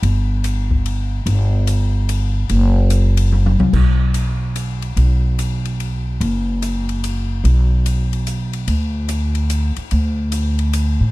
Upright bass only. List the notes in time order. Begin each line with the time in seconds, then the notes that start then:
0.03 G1
1.26 G1
2.50 F#1
3.59 C2
3.73 B1
4.96 B1
6.21 F#1
7.44 B1
8.68 D2
9.77 muted upright bass stroke
9.92 D2
11.00 A2